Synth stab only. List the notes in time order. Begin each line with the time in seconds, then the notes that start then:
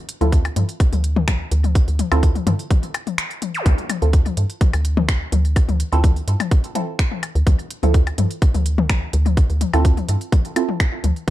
0.21 C4 E4 F4 A4
2.12 C4 E4 F4 A4
4.02 C4 E4 F4 A4
5.92 C4 E4 F4 A4
6.75 C4 E4 F4 A4
7.83 C4 E4 F4 A4
9.73 C4 E4 F4 A4
10.56 C4 E4 F4 A4